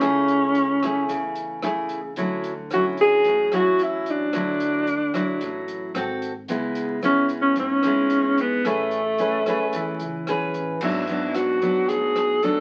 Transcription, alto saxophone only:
0.00 1.37 C#4 medium
2.74 2.85 F#4 medium
3.01 3.56 G#4 loud
3.55 3.84 F#4 medium
3.83 4.12 E4 medium
4.10 5.70 D4 medium
7.05 7.29 C#4 medium
7.42 7.57 C#4 loud
7.59 8.42 C#4 loud
8.41 8.68 B3 medium
8.67 10.28 A3 medium
10.84 11.36 E4 medium
11.35 11.90 F#4 medium
11.89 12.45 G#4 loud
12.43 12.60 A4 loud

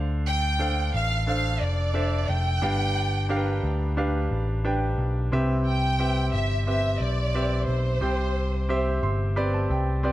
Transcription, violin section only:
0.27 0.90 G5 medium
0.94 1.25 F5 medium
1.27 1.58 F5 medium
1.61 2.28 D5 medium
2.28 3.63 G5 medium
5.66 6.29 G5 medium
6.33 6.64 E5 medium
6.66 6.98 E5 medium
7.00 7.68 D5 medium
7.67 8.98 C5 medium

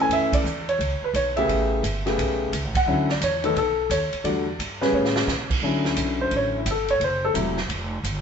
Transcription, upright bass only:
0.09 0.43 F#2 medium
0.44 0.78 E2 medium
0.79 1.00 C#2 medium
1.01 muted upright bass stroke soft
1.14 1.47 B1 medium
1.48 1.82 A1 medium
1.83 2.17 G1 medium
2.18 2.51 B1 medium
2.52 2.64 C#2 medium
2.64 2.75 A1 medium
2.76 2.86 G1 medium
2.86 3.20 D2 medium
3.21 3.55 E2 medium
3.56 3.89 B1 medium
3.90 4.11 D#2 medium
4.13 muted upright bass stroke soft
4.24 4.58 E2 medium
4.59 4.92 G2 medium
4.92 5.27 A2 medium
5.27 5.61 B2 medium
5.62 5.96 D2 medium
5.96 6.30 B1 medium
6.31 6.65 A1 medium
6.66 6.99 G1 medium
7.00 7.34 F#1 medium
7.34 7.68 E1 medium
7.69 8.03 F1 medium
8.03 8.21 G1 medium

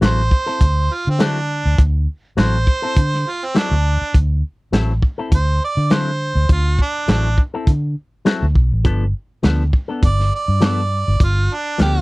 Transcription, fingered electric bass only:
0.02 0.29 A1 medium
0.61 0.88 D2 medium
1.07 1.62 D3 medium
1.65 1.78 D2 medium
1.79 2.06 D2 medium
2.38 2.65 A1 medium
2.97 3.23 D3 medium
3.71 3.98 D2 medium
4.01 muted fingered electric bass stroke soft
4.15 4.41 D2 medium
4.73 5.00 A1 medium
5.32 5.59 D2 medium
5.77 6.32 D3 medium
6.35 6.48 D2 medium
6.49 6.76 D2 medium
7.08 7.35 A1 medium
7.67 7.94 D3 medium
8.43 8.54 D2 medium
8.55 8.70 B1 medium
8.72 8.84 A1 medium
8.85 9.12 G1 medium
9.44 9.71 D2 medium
10.03 10.30 G1 medium
10.48 11.03 G2 medium
11.08 11.19 G1 medium
11.20 11.47 G1 medium
11.80 12.01 D2 medium

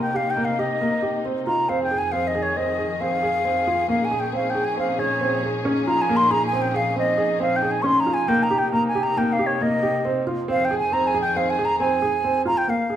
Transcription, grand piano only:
0.00 0.10 A#3 medium
0.14 0.32 G4 medium
0.37 0.54 A#3 medium
0.59 0.76 G4 medium
0.81 0.98 A#3 medium
1.02 1.20 G4 medium
1.25 1.42 C4 medium
1.47 1.64 F4 medium
1.69 1.86 C4 medium
1.91 2.08 G#4 medium
2.13 2.30 C4 medium
2.35 2.52 G#4 medium
2.57 2.74 C4 medium
2.79 2.96 G#4 medium
3.00 3.18 C4 medium
3.23 3.40 G#4 medium
3.45 3.62 C4 medium
3.67 3.84 F4 medium
3.89 4.06 A#3 medium
4.11 4.28 G#4 medium
4.33 4.50 C4 medium
4.55 4.72 G#4 medium
4.78 4.94 C4 medium
4.99 5.16 G#4 medium
5.21 5.38 C4 medium
5.43 5.60 G#4 medium
5.65 5.82 C#4 medium
5.87 6.04 F4 medium
6.09 6.26 A#3 medium
6.31 6.48 G#4 medium
6.53 6.70 C4 medium
6.74 6.91 G#4 medium
6.96 7.13 C4 medium
7.18 7.35 G#4 medium
7.40 7.57 C4 medium
7.62 7.80 G#4 medium
7.84 8.01 C#4 medium
8.06 8.24 F4 medium
8.28 8.45 A#3 medium
8.51 8.68 G4 medium
8.72 8.90 A#3 medium
8.95 9.12 G4 medium
9.17 9.34 A#3 medium
9.39 9.56 G4 medium
9.61 9.78 A#3 medium
9.83 10.00 G4 medium
10.05 10.22 C4 medium
10.27 10.44 F4 medium
10.48 10.65 C4 medium
10.71 10.88 G#4 medium
10.92 11.09 C4 medium
11.14 11.32 G#4 medium
11.36 11.53 C4 medium
11.59 11.76 G#4 medium
11.80 11.97 C4 medium
12.02 12.19 G#4 medium
12.24 12.41 C4 medium
12.45 12.63 F4 medium
12.68 12.85 A#3 medium
12.90 12.96 G#4 medium

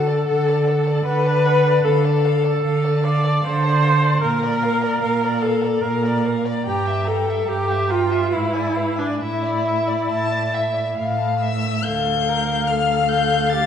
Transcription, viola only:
0.00 1.05 A4 medium
1.06 1.86 B4 loud
1.85 3.05 A4 medium
3.04 3.45 D5 medium
3.44 4.22 C5 loud
4.22 5.43 A#4 medium
5.42 5.83 A4 medium
5.81 6.24 A#4 medium
6.65 7.08 G4 medium
7.07 7.50 A4 medium
7.48 7.92 G4 medium
7.90 8.34 F4 medium
8.33 9.00 E4 medium
8.98 9.22 D4 medium
9.21 11.42 E4 medium
11.87 12.30 A4 medium
12.29 12.72 A#4 medium
12.70 13.54 A4 medium
13.53 13.66 G4 medium

